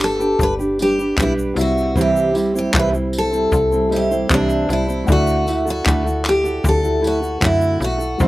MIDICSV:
0, 0, Header, 1, 6, 480
1, 0, Start_track
1, 0, Tempo, 779221
1, 1207, Time_signature, 4, 2, 24, 8
1, 5100, End_track
2, 0, Start_track
2, 0, Title_t, "Steel-string acoustic guitar"
2, 0, Program_c, 0, 25
2, 24, Note_on_c, 0, 69, 93
2, 262, Note_off_c, 0, 69, 0
2, 266, Note_on_c, 0, 71, 92
2, 328, Note_off_c, 0, 71, 0
2, 506, Note_on_c, 0, 67, 92
2, 720, Note_off_c, 0, 67, 0
2, 754, Note_on_c, 0, 64, 88
2, 815, Note_off_c, 0, 64, 0
2, 991, Note_on_c, 0, 66, 88
2, 1226, Note_off_c, 0, 66, 0
2, 1238, Note_on_c, 0, 67, 92
2, 1585, Note_off_c, 0, 67, 0
2, 1592, Note_on_c, 0, 67, 86
2, 1703, Note_off_c, 0, 67, 0
2, 1721, Note_on_c, 0, 71, 100
2, 1782, Note_off_c, 0, 71, 0
2, 1961, Note_on_c, 0, 69, 96
2, 2400, Note_off_c, 0, 69, 0
2, 2441, Note_on_c, 0, 67, 87
2, 2649, Note_off_c, 0, 67, 0
2, 2676, Note_on_c, 0, 62, 86
2, 2909, Note_off_c, 0, 62, 0
2, 2913, Note_on_c, 0, 64, 84
2, 3147, Note_off_c, 0, 64, 0
2, 3153, Note_on_c, 0, 66, 96
2, 3505, Note_off_c, 0, 66, 0
2, 3513, Note_on_c, 0, 66, 85
2, 3870, Note_off_c, 0, 66, 0
2, 3873, Note_on_c, 0, 67, 86
2, 4107, Note_off_c, 0, 67, 0
2, 4119, Note_on_c, 0, 69, 93
2, 4349, Note_off_c, 0, 69, 0
2, 4356, Note_on_c, 0, 66, 85
2, 4588, Note_off_c, 0, 66, 0
2, 4595, Note_on_c, 0, 64, 92
2, 4827, Note_off_c, 0, 64, 0
2, 4831, Note_on_c, 0, 66, 87
2, 5100, Note_off_c, 0, 66, 0
2, 5100, End_track
3, 0, Start_track
3, 0, Title_t, "Felt piano"
3, 0, Program_c, 1, 0
3, 0, Control_c, 1, 64, 127
3, 0, Note_on_c, 1, 59, 67
3, 0, Note_on_c, 1, 62, 61
3, 0, Note_on_c, 1, 67, 60
3, 0, Note_on_c, 1, 74, 74
3, 937, Note_off_c, 1, 59, 0
3, 940, Note_off_c, 1, 62, 0
3, 944, Note_off_c, 1, 67, 0
3, 949, Note_on_c, 1, 60, 61
3, 950, Note_off_c, 1, 74, 0
3, 955, Note_on_c, 1, 64, 63
3, 968, Note_on_c, 1, 55, 58
3, 974, Note_on_c, 1, 76, 73
3, 976, Control_c, 1, 64, 0
3, 1093, Control_c, 1, 64, 127
3, 2374, Note_off_c, 1, 60, 0
3, 2377, Note_off_c, 1, 64, 0
3, 2384, Note_off_c, 1, 55, 0
3, 2387, Note_off_c, 1, 76, 0
3, 2393, Note_on_c, 1, 60, 52
3, 2396, Note_on_c, 1, 64, 49
3, 2398, Note_on_c, 1, 67, 49
3, 2405, Note_on_c, 1, 75, 47
3, 2447, Note_off_c, 1, 75, 0
3, 2447, Note_on_c, 1, 76, 58
3, 3103, Note_on_c, 1, 57, 72
3, 3106, Note_off_c, 1, 64, 0
3, 3116, Note_on_c, 1, 64, 61
3, 3121, Note_off_c, 1, 60, 0
3, 3121, Note_on_c, 1, 78, 64
3, 3123, Note_off_c, 1, 67, 0
3, 3129, Note_on_c, 1, 74, 73
3, 3137, Control_c, 1, 64, 0
3, 3148, Note_off_c, 1, 76, 0
3, 3243, Control_c, 1, 64, 127
3, 5009, Note_off_c, 1, 57, 0
3, 5015, Note_off_c, 1, 64, 0
3, 5018, Note_off_c, 1, 78, 0
3, 5022, Note_off_c, 1, 74, 0
3, 5038, Note_on_c, 1, 55, 66
3, 5048, Note_on_c, 1, 60, 63
3, 5055, Control_c, 1, 64, 0
3, 5056, Note_on_c, 1, 64, 63
3, 5063, Note_on_c, 1, 72, 75
3, 5100, Note_off_c, 1, 55, 0
3, 5100, Note_off_c, 1, 60, 0
3, 5100, Note_off_c, 1, 64, 0
3, 5100, Note_off_c, 1, 72, 0
3, 5100, End_track
4, 0, Start_track
4, 0, Title_t, "Steel-string acoustic guitar"
4, 0, Program_c, 2, 25
4, 0, Note_on_c, 2, 62, 44
4, 0, Note_on_c, 2, 67, 52
4, 0, Note_on_c, 2, 71, 59
4, 112, Note_off_c, 2, 71, 0
4, 117, Note_off_c, 2, 67, 0
4, 119, Note_on_c, 2, 71, 56
4, 125, Note_on_c, 2, 67, 53
4, 126, Note_off_c, 2, 62, 0
4, 133, Note_on_c, 2, 62, 43
4, 354, Note_off_c, 2, 71, 0
4, 359, Note_off_c, 2, 67, 0
4, 361, Note_on_c, 2, 71, 58
4, 366, Note_off_c, 2, 62, 0
4, 367, Note_on_c, 2, 67, 48
4, 373, Note_on_c, 2, 62, 44
4, 484, Note_off_c, 2, 71, 0
4, 486, Note_off_c, 2, 67, 0
4, 487, Note_off_c, 2, 62, 0
4, 490, Note_on_c, 2, 55, 55
4, 495, Note_on_c, 2, 62, 61
4, 501, Note_on_c, 2, 67, 67
4, 507, Note_on_c, 2, 71, 66
4, 599, Note_off_c, 2, 71, 0
4, 607, Note_off_c, 2, 67, 0
4, 607, Note_on_c, 2, 71, 52
4, 608, Note_off_c, 2, 55, 0
4, 610, Note_off_c, 2, 62, 0
4, 614, Note_on_c, 2, 67, 47
4, 624, Note_on_c, 2, 62, 41
4, 725, Note_off_c, 2, 62, 0
4, 727, Note_off_c, 2, 71, 0
4, 728, Note_off_c, 2, 67, 0
4, 728, Note_on_c, 2, 55, 86
4, 732, Note_on_c, 2, 62, 80
4, 736, Note_on_c, 2, 67, 86
4, 742, Note_on_c, 2, 71, 92
4, 961, Note_off_c, 2, 55, 0
4, 968, Note_on_c, 2, 55, 56
4, 969, Note_off_c, 2, 62, 0
4, 971, Note_off_c, 2, 67, 0
4, 972, Note_on_c, 2, 60, 59
4, 974, Note_off_c, 2, 71, 0
4, 979, Note_on_c, 2, 64, 62
4, 981, Note_on_c, 2, 72, 66
4, 1202, Note_off_c, 2, 55, 0
4, 1204, Note_off_c, 2, 60, 0
4, 1204, Note_on_c, 2, 48, 83
4, 1206, Note_off_c, 2, 72, 0
4, 1207, Note_off_c, 2, 64, 0
4, 1208, Note_on_c, 2, 52, 85
4, 1210, Note_on_c, 2, 55, 87
4, 1211, Note_on_c, 2, 60, 84
4, 1214, Note_on_c, 2, 64, 96
4, 1214, Note_on_c, 2, 72, 87
4, 1431, Note_off_c, 2, 55, 0
4, 1437, Note_off_c, 2, 60, 0
4, 1439, Note_on_c, 2, 55, 60
4, 1443, Note_off_c, 2, 64, 0
4, 1445, Note_on_c, 2, 60, 62
4, 1446, Note_off_c, 2, 48, 0
4, 1448, Note_off_c, 2, 52, 0
4, 1448, Note_off_c, 2, 72, 0
4, 1450, Note_on_c, 2, 64, 63
4, 1456, Note_on_c, 2, 72, 65
4, 1556, Note_off_c, 2, 72, 0
4, 1563, Note_off_c, 2, 55, 0
4, 1564, Note_on_c, 2, 72, 54
4, 1565, Note_off_c, 2, 64, 0
4, 1566, Note_off_c, 2, 60, 0
4, 1572, Note_on_c, 2, 64, 51
4, 1574, Note_on_c, 2, 60, 49
4, 1577, Note_on_c, 2, 55, 44
4, 1679, Note_off_c, 2, 60, 0
4, 1680, Note_off_c, 2, 55, 0
4, 1682, Note_off_c, 2, 64, 0
4, 1682, Note_on_c, 2, 48, 76
4, 1686, Note_off_c, 2, 72, 0
4, 1686, Note_on_c, 2, 52, 75
4, 1687, Note_on_c, 2, 55, 71
4, 1687, Note_on_c, 2, 60, 77
4, 1689, Note_on_c, 2, 64, 85
4, 1693, Note_on_c, 2, 72, 86
4, 1796, Note_off_c, 2, 72, 0
4, 1801, Note_off_c, 2, 64, 0
4, 1803, Note_on_c, 2, 72, 54
4, 1805, Note_off_c, 2, 48, 0
4, 1805, Note_off_c, 2, 60, 0
4, 1807, Note_off_c, 2, 52, 0
4, 1807, Note_off_c, 2, 55, 0
4, 1809, Note_on_c, 2, 64, 54
4, 1812, Note_on_c, 2, 60, 49
4, 1816, Note_on_c, 2, 55, 43
4, 2036, Note_off_c, 2, 72, 0
4, 2041, Note_off_c, 2, 64, 0
4, 2042, Note_off_c, 2, 60, 0
4, 2043, Note_on_c, 2, 72, 54
4, 2048, Note_on_c, 2, 64, 51
4, 2050, Note_off_c, 2, 55, 0
4, 2050, Note_on_c, 2, 60, 49
4, 2057, Note_on_c, 2, 55, 43
4, 2283, Note_off_c, 2, 72, 0
4, 2286, Note_off_c, 2, 64, 0
4, 2289, Note_off_c, 2, 60, 0
4, 2290, Note_on_c, 2, 72, 52
4, 2293, Note_off_c, 2, 55, 0
4, 2293, Note_on_c, 2, 64, 51
4, 2300, Note_on_c, 2, 60, 51
4, 2302, Note_on_c, 2, 55, 46
4, 2402, Note_off_c, 2, 55, 0
4, 2408, Note_off_c, 2, 60, 0
4, 2409, Note_off_c, 2, 72, 0
4, 2409, Note_on_c, 2, 55, 63
4, 2411, Note_off_c, 2, 64, 0
4, 2416, Note_on_c, 2, 60, 67
4, 2418, Note_on_c, 2, 64, 63
4, 2424, Note_on_c, 2, 72, 64
4, 2526, Note_off_c, 2, 72, 0
4, 2529, Note_off_c, 2, 55, 0
4, 2532, Note_off_c, 2, 60, 0
4, 2532, Note_off_c, 2, 64, 0
4, 2534, Note_on_c, 2, 72, 54
4, 2539, Note_on_c, 2, 64, 52
4, 2541, Note_on_c, 2, 60, 45
4, 2546, Note_on_c, 2, 55, 45
4, 2642, Note_off_c, 2, 55, 0
4, 2642, Note_off_c, 2, 60, 0
4, 2643, Note_off_c, 2, 64, 0
4, 2643, Note_on_c, 2, 48, 78
4, 2646, Note_on_c, 2, 52, 87
4, 2647, Note_off_c, 2, 72, 0
4, 2649, Note_on_c, 2, 55, 90
4, 2649, Note_on_c, 2, 60, 86
4, 2650, Note_on_c, 2, 64, 84
4, 2654, Note_on_c, 2, 72, 96
4, 2879, Note_off_c, 2, 55, 0
4, 2885, Note_off_c, 2, 48, 0
4, 2885, Note_off_c, 2, 60, 0
4, 2886, Note_on_c, 2, 55, 62
4, 2887, Note_off_c, 2, 52, 0
4, 2889, Note_off_c, 2, 64, 0
4, 2891, Note_off_c, 2, 72, 0
4, 2892, Note_on_c, 2, 60, 59
4, 2898, Note_on_c, 2, 72, 65
4, 2899, Note_on_c, 2, 64, 67
4, 3000, Note_off_c, 2, 72, 0
4, 3003, Note_off_c, 2, 64, 0
4, 3007, Note_off_c, 2, 55, 0
4, 3007, Note_on_c, 2, 72, 48
4, 3009, Note_off_c, 2, 60, 0
4, 3011, Note_on_c, 2, 64, 45
4, 3016, Note_on_c, 2, 60, 45
4, 3024, Note_on_c, 2, 55, 43
4, 3128, Note_off_c, 2, 72, 0
4, 3129, Note_off_c, 2, 64, 0
4, 3132, Note_off_c, 2, 55, 0
4, 3132, Note_off_c, 2, 60, 0
4, 3133, Note_on_c, 2, 50, 80
4, 3135, Note_on_c, 2, 57, 83
4, 3137, Note_on_c, 2, 64, 75
4, 3141, Note_on_c, 2, 66, 87
4, 3141, Note_on_c, 2, 69, 81
4, 3364, Note_off_c, 2, 57, 0
4, 3370, Note_off_c, 2, 50, 0
4, 3371, Note_on_c, 2, 57, 67
4, 3372, Note_off_c, 2, 64, 0
4, 3373, Note_off_c, 2, 66, 0
4, 3374, Note_off_c, 2, 69, 0
4, 3379, Note_on_c, 2, 64, 57
4, 3380, Note_on_c, 2, 66, 66
4, 3386, Note_on_c, 2, 69, 60
4, 3475, Note_off_c, 2, 69, 0
4, 3483, Note_off_c, 2, 66, 0
4, 3483, Note_on_c, 2, 69, 54
4, 3490, Note_off_c, 2, 57, 0
4, 3491, Note_off_c, 2, 64, 0
4, 3491, Note_on_c, 2, 66, 47
4, 3498, Note_on_c, 2, 64, 47
4, 3604, Note_off_c, 2, 64, 0
4, 3605, Note_off_c, 2, 69, 0
4, 3609, Note_off_c, 2, 66, 0
4, 3610, Note_on_c, 2, 50, 74
4, 3612, Note_on_c, 2, 57, 88
4, 3612, Note_on_c, 2, 64, 85
4, 3615, Note_on_c, 2, 69, 91
4, 3619, Note_on_c, 2, 66, 88
4, 3716, Note_off_c, 2, 69, 0
4, 3723, Note_on_c, 2, 69, 62
4, 3724, Note_off_c, 2, 66, 0
4, 3729, Note_off_c, 2, 50, 0
4, 3730, Note_off_c, 2, 57, 0
4, 3730, Note_off_c, 2, 64, 0
4, 3731, Note_on_c, 2, 66, 53
4, 3740, Note_on_c, 2, 64, 48
4, 3959, Note_off_c, 2, 69, 0
4, 3967, Note_off_c, 2, 66, 0
4, 3967, Note_on_c, 2, 69, 59
4, 3974, Note_off_c, 2, 64, 0
4, 3974, Note_on_c, 2, 66, 53
4, 3984, Note_on_c, 2, 64, 48
4, 4194, Note_off_c, 2, 69, 0
4, 4201, Note_on_c, 2, 69, 56
4, 4202, Note_off_c, 2, 66, 0
4, 4210, Note_off_c, 2, 64, 0
4, 4210, Note_on_c, 2, 66, 53
4, 4217, Note_on_c, 2, 64, 43
4, 4317, Note_off_c, 2, 64, 0
4, 4320, Note_on_c, 2, 57, 60
4, 4322, Note_off_c, 2, 66, 0
4, 4324, Note_off_c, 2, 69, 0
4, 4324, Note_on_c, 2, 64, 66
4, 4330, Note_on_c, 2, 66, 62
4, 4334, Note_on_c, 2, 69, 66
4, 4428, Note_off_c, 2, 69, 0
4, 4435, Note_on_c, 2, 69, 54
4, 4441, Note_off_c, 2, 66, 0
4, 4443, Note_off_c, 2, 57, 0
4, 4445, Note_off_c, 2, 64, 0
4, 4448, Note_on_c, 2, 66, 47
4, 4453, Note_on_c, 2, 64, 47
4, 4556, Note_off_c, 2, 66, 0
4, 4557, Note_off_c, 2, 69, 0
4, 4558, Note_off_c, 2, 64, 0
4, 4559, Note_on_c, 2, 50, 73
4, 4560, Note_on_c, 2, 57, 86
4, 4563, Note_on_c, 2, 66, 88
4, 4564, Note_on_c, 2, 69, 96
4, 4566, Note_on_c, 2, 64, 87
4, 4796, Note_off_c, 2, 57, 0
4, 4801, Note_off_c, 2, 64, 0
4, 4802, Note_off_c, 2, 50, 0
4, 4804, Note_off_c, 2, 66, 0
4, 4804, Note_on_c, 2, 57, 58
4, 4805, Note_off_c, 2, 69, 0
4, 4809, Note_on_c, 2, 64, 59
4, 4814, Note_on_c, 2, 66, 63
4, 4817, Note_on_c, 2, 69, 65
4, 4910, Note_off_c, 2, 69, 0
4, 4917, Note_on_c, 2, 69, 51
4, 4919, Note_off_c, 2, 66, 0
4, 4922, Note_off_c, 2, 64, 0
4, 4925, Note_off_c, 2, 57, 0
4, 4927, Note_on_c, 2, 66, 48
4, 4929, Note_on_c, 2, 64, 40
4, 5041, Note_off_c, 2, 69, 0
4, 5046, Note_off_c, 2, 66, 0
4, 5047, Note_off_c, 2, 64, 0
4, 5048, Note_on_c, 2, 48, 77
4, 5050, Note_on_c, 2, 55, 91
4, 5051, Note_on_c, 2, 52, 76
4, 5055, Note_on_c, 2, 64, 78
4, 5057, Note_on_c, 2, 60, 85
4, 5060, Note_on_c, 2, 72, 97
4, 5100, Note_off_c, 2, 48, 0
4, 5100, Note_off_c, 2, 52, 0
4, 5100, Note_off_c, 2, 55, 0
4, 5100, Note_off_c, 2, 60, 0
4, 5100, Note_off_c, 2, 64, 0
4, 5100, Note_off_c, 2, 72, 0
4, 5100, End_track
5, 0, Start_track
5, 0, Title_t, "FM bass"
5, 0, Program_c, 3, 39
5, 0, Note_on_c, 3, 31, 115
5, 219, Note_off_c, 3, 31, 0
5, 241, Note_on_c, 3, 31, 101
5, 699, Note_off_c, 3, 31, 0
5, 722, Note_on_c, 3, 35, 90
5, 945, Note_off_c, 3, 35, 0
5, 961, Note_on_c, 3, 36, 94
5, 1660, Note_off_c, 3, 36, 0
5, 1686, Note_on_c, 3, 36, 109
5, 2142, Note_off_c, 3, 36, 0
5, 2168, Note_on_c, 3, 36, 107
5, 2623, Note_off_c, 3, 36, 0
5, 2649, Note_on_c, 3, 36, 92
5, 2869, Note_off_c, 3, 36, 0
5, 2888, Note_on_c, 3, 36, 84
5, 3109, Note_off_c, 3, 36, 0
5, 3130, Note_on_c, 3, 38, 103
5, 3584, Note_off_c, 3, 38, 0
5, 3610, Note_on_c, 3, 38, 105
5, 4064, Note_off_c, 3, 38, 0
5, 4092, Note_on_c, 3, 38, 107
5, 4544, Note_off_c, 3, 38, 0
5, 4572, Note_on_c, 3, 42, 81
5, 4790, Note_off_c, 3, 42, 0
5, 4806, Note_on_c, 3, 35, 88
5, 5027, Note_off_c, 3, 35, 0
5, 5053, Note_on_c, 3, 36, 108
5, 5100, Note_off_c, 3, 36, 0
5, 5100, End_track
6, 0, Start_track
6, 0, Title_t, "Drums"
6, 0, Note_on_c, 9, 54, 75
6, 1, Note_on_c, 9, 39, 85
6, 62, Note_off_c, 9, 54, 0
6, 63, Note_off_c, 9, 39, 0
6, 128, Note_on_c, 9, 82, 51
6, 190, Note_off_c, 9, 82, 0
6, 242, Note_on_c, 9, 36, 110
6, 249, Note_on_c, 9, 82, 77
6, 304, Note_off_c, 9, 36, 0
6, 311, Note_off_c, 9, 82, 0
6, 370, Note_on_c, 9, 82, 46
6, 432, Note_off_c, 9, 82, 0
6, 487, Note_on_c, 9, 54, 65
6, 549, Note_off_c, 9, 54, 0
6, 612, Note_on_c, 9, 82, 48
6, 673, Note_off_c, 9, 82, 0
6, 724, Note_on_c, 9, 36, 102
6, 725, Note_on_c, 9, 39, 96
6, 733, Note_on_c, 9, 82, 66
6, 785, Note_off_c, 9, 36, 0
6, 787, Note_off_c, 9, 39, 0
6, 795, Note_off_c, 9, 82, 0
6, 855, Note_on_c, 9, 82, 51
6, 916, Note_off_c, 9, 82, 0
6, 964, Note_on_c, 9, 54, 64
6, 974, Note_on_c, 9, 82, 51
6, 1026, Note_off_c, 9, 54, 0
6, 1036, Note_off_c, 9, 82, 0
6, 1096, Note_on_c, 9, 82, 51
6, 1158, Note_off_c, 9, 82, 0
6, 1205, Note_on_c, 9, 36, 104
6, 1213, Note_on_c, 9, 82, 69
6, 1267, Note_off_c, 9, 36, 0
6, 1274, Note_off_c, 9, 82, 0
6, 1333, Note_on_c, 9, 82, 51
6, 1395, Note_off_c, 9, 82, 0
6, 1447, Note_on_c, 9, 54, 54
6, 1459, Note_on_c, 9, 82, 44
6, 1509, Note_off_c, 9, 54, 0
6, 1520, Note_off_c, 9, 82, 0
6, 1577, Note_on_c, 9, 82, 55
6, 1638, Note_off_c, 9, 82, 0
6, 1685, Note_on_c, 9, 39, 112
6, 1688, Note_on_c, 9, 36, 115
6, 1695, Note_on_c, 9, 82, 71
6, 1747, Note_off_c, 9, 39, 0
6, 1749, Note_off_c, 9, 36, 0
6, 1756, Note_off_c, 9, 82, 0
6, 1812, Note_on_c, 9, 82, 44
6, 1873, Note_off_c, 9, 82, 0
6, 1928, Note_on_c, 9, 54, 75
6, 1990, Note_off_c, 9, 54, 0
6, 2051, Note_on_c, 9, 82, 50
6, 2113, Note_off_c, 9, 82, 0
6, 2169, Note_on_c, 9, 36, 98
6, 2170, Note_on_c, 9, 82, 74
6, 2230, Note_off_c, 9, 36, 0
6, 2232, Note_off_c, 9, 82, 0
6, 2293, Note_on_c, 9, 82, 44
6, 2354, Note_off_c, 9, 82, 0
6, 2416, Note_on_c, 9, 54, 60
6, 2477, Note_off_c, 9, 54, 0
6, 2535, Note_on_c, 9, 82, 47
6, 2597, Note_off_c, 9, 82, 0
6, 2650, Note_on_c, 9, 36, 108
6, 2650, Note_on_c, 9, 82, 72
6, 2652, Note_on_c, 9, 39, 99
6, 2711, Note_off_c, 9, 82, 0
6, 2712, Note_off_c, 9, 36, 0
6, 2713, Note_off_c, 9, 39, 0
6, 2770, Note_on_c, 9, 82, 49
6, 2831, Note_off_c, 9, 82, 0
6, 2895, Note_on_c, 9, 54, 61
6, 2896, Note_on_c, 9, 82, 49
6, 2957, Note_off_c, 9, 54, 0
6, 2957, Note_off_c, 9, 82, 0
6, 3013, Note_on_c, 9, 82, 50
6, 3075, Note_off_c, 9, 82, 0
6, 3127, Note_on_c, 9, 82, 64
6, 3130, Note_on_c, 9, 36, 114
6, 3189, Note_off_c, 9, 82, 0
6, 3192, Note_off_c, 9, 36, 0
6, 3247, Note_on_c, 9, 82, 52
6, 3308, Note_off_c, 9, 82, 0
6, 3373, Note_on_c, 9, 82, 49
6, 3374, Note_on_c, 9, 54, 57
6, 3434, Note_off_c, 9, 82, 0
6, 3436, Note_off_c, 9, 54, 0
6, 3495, Note_on_c, 9, 82, 59
6, 3556, Note_off_c, 9, 82, 0
6, 3608, Note_on_c, 9, 39, 110
6, 3612, Note_on_c, 9, 36, 115
6, 3617, Note_on_c, 9, 82, 67
6, 3669, Note_off_c, 9, 39, 0
6, 3673, Note_off_c, 9, 36, 0
6, 3679, Note_off_c, 9, 82, 0
6, 3742, Note_on_c, 9, 82, 46
6, 3803, Note_off_c, 9, 82, 0
6, 3850, Note_on_c, 9, 39, 89
6, 3850, Note_on_c, 9, 54, 71
6, 3911, Note_off_c, 9, 54, 0
6, 3912, Note_off_c, 9, 39, 0
6, 3976, Note_on_c, 9, 82, 56
6, 4038, Note_off_c, 9, 82, 0
6, 4091, Note_on_c, 9, 36, 109
6, 4096, Note_on_c, 9, 82, 78
6, 4153, Note_off_c, 9, 36, 0
6, 4158, Note_off_c, 9, 82, 0
6, 4215, Note_on_c, 9, 82, 45
6, 4276, Note_off_c, 9, 82, 0
6, 4338, Note_on_c, 9, 54, 62
6, 4399, Note_off_c, 9, 54, 0
6, 4454, Note_on_c, 9, 82, 46
6, 4516, Note_off_c, 9, 82, 0
6, 4569, Note_on_c, 9, 82, 72
6, 4572, Note_on_c, 9, 36, 99
6, 4573, Note_on_c, 9, 39, 99
6, 4631, Note_off_c, 9, 82, 0
6, 4634, Note_off_c, 9, 36, 0
6, 4634, Note_off_c, 9, 39, 0
6, 4690, Note_on_c, 9, 82, 52
6, 4752, Note_off_c, 9, 82, 0
6, 4815, Note_on_c, 9, 82, 51
6, 4817, Note_on_c, 9, 54, 64
6, 4877, Note_off_c, 9, 82, 0
6, 4878, Note_off_c, 9, 54, 0
6, 4930, Note_on_c, 9, 82, 54
6, 4992, Note_off_c, 9, 82, 0
6, 5050, Note_on_c, 9, 82, 70
6, 5053, Note_on_c, 9, 36, 115
6, 5100, Note_off_c, 9, 36, 0
6, 5100, Note_off_c, 9, 82, 0
6, 5100, End_track
0, 0, End_of_file